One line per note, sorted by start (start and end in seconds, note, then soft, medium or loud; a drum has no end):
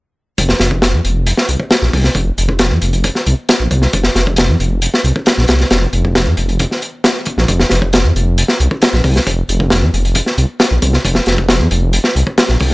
0.38 0.54 F1 medium
0.38 kick medium
0.38 closed hi-hat medium
0.49 snare medium
0.60 0.95 F1 medium
0.60 snare medium
0.60 closed hi-hat medium
0.71 kick medium
0.82 snare loud
0.82 closed hi-hat medium
0.93 1.01 F2 medium
1.04 1.33 F1 medium
1.04 closed hi-hat medium
1.27 closed hi-hat medium
1.37 snare medium
1.49 1.57 C2 medium
1.49 closed hi-hat medium
1.60 kick medium
1.71 snare loud
1.71 closed hi-hat medium
1.82 1.90 A#1 medium
1.82 snare soft
1.93 2.09 C2 medium
1.93 kick medium
1.93 open hi-hat medium
2.04 snare soft
2.15 2.31 F1 loud
2.15 kick medium
2.15 closed hi-hat medium
2.38 2.72 F1 medium
2.38 closed hi-hat medium
2.49 kick loud
2.59 snare loud
2.59 closed hi-hat medium
2.71 2.79 F2 medium
2.82 3.10 F1 medium
2.82 closed hi-hat medium
2.93 closed hi-hat soft
3.04 kick loud
3.04 closed hi-hat medium
3.15 snare soft
3.26 3.35 C2 medium
3.26 closed hi-hat medium
3.49 snare loud
3.49 closed hi-hat medium
3.60 3.68 A#1 medium
3.71 3.87 C2 medium
3.71 kick medium
3.71 closed hi-hat medium
3.82 snare soft
3.93 4.09 F1 medium
3.93 kick loud
3.93 closed hi-hat medium
4.03 snare medium
4.15 4.50 F1 medium
4.15 snare soft
4.15 closed hi-hat medium
4.27 kick medium
4.36 snare loud
4.36 closed hi-hat medium
4.49 4.57 F2 medium
4.59 4.88 F1 medium
4.59 closed hi-hat medium
4.82 closed hi-hat medium
4.94 snare medium
5.04 5.12 C2 medium
5.04 closed hi-hat medium
5.16 kick medium
5.26 snare loud
5.26 closed hi-hat medium
5.38 5.46 A#1 medium
5.38 snare soft
5.48 5.65 C2 medium
5.48 snare loud
5.48 closed hi-hat medium
5.60 snare soft
5.70 5.87 F1 loud
5.70 snare medium
5.70 closed hi-hat medium
5.93 6.28 F1 medium
5.93 closed hi-hat medium
6.05 kick medium
6.15 snare loud
6.15 closed hi-hat medium
6.26 6.34 F2 medium
6.37 6.66 F1 medium
6.37 closed hi-hat medium
6.49 closed hi-hat soft
6.59 kick loud
6.59 closed hi-hat medium
6.71 snare soft
6.82 closed hi-hat medium
7.04 snare loud
7.04 closed hi-hat medium
7.25 kick medium
7.25 closed hi-hat medium
7.37 7.46 A#1 loud
7.37 snare soft
7.48 7.65 F1 medium
7.48 kick loud
7.48 closed hi-hat medium
7.60 snare medium
7.70 8.06 F1 medium
7.70 snare soft
7.70 closed hi-hat medium
7.82 kick loud
7.93 snare loud
7.93 closed hi-hat medium
8.04 8.12 F2 medium
8.15 8.44 F1 medium
8.15 closed hi-hat medium
8.38 closed hi-hat medium
8.48 snare medium
8.60 8.68 C2 medium
8.60 closed hi-hat medium
8.71 kick medium
8.82 snare loud
8.82 closed hi-hat medium
8.93 9.01 A#1 medium
8.93 snare soft
9.04 9.20 C2 medium
9.04 kick loud
9.04 open hi-hat medium
9.16 snare soft
9.27 9.43 F1 loud
9.27 kick loud
9.27 closed hi-hat medium
9.49 9.84 F1 medium
9.49 closed hi-hat medium
9.60 kick medium
9.70 snare loud
9.70 closed hi-hat medium
9.82 9.90 F2 medium
9.93 10.22 F1 medium
9.93 closed hi-hat medium
10.05 closed hi-hat soft
10.15 kick loud
10.15 closed hi-hat medium
10.26 snare soft
10.37 10.46 C2 medium
10.37 closed hi-hat medium
10.60 snare loud
10.60 closed hi-hat medium
10.71 10.79 A#1 medium
10.82 10.98 C2 medium
10.82 kick medium
10.82 closed hi-hat medium
10.93 snare soft
11.05 11.20 F1 medium
11.05 kick loud
11.05 closed hi-hat medium
11.15 snare medium
11.26 11.61 F1 medium
11.26 snare medium
11.26 closed hi-hat medium
11.38 kick medium
11.49 snare loud
11.49 closed hi-hat medium
11.60 11.68 F2 medium
11.71 11.99 F1 medium
11.71 closed hi-hat medium
11.93 closed hi-hat medium
12.04 snare medium
12.15 12.23 C2 medium
12.15 closed hi-hat medium
12.27 kick medium
12.38 snare loud
12.38 closed hi-hat medium
12.48 12.57 A#1 medium
12.48 snare soft
12.59 12.74 C2 medium
12.59 kick medium
12.59 open hi-hat medium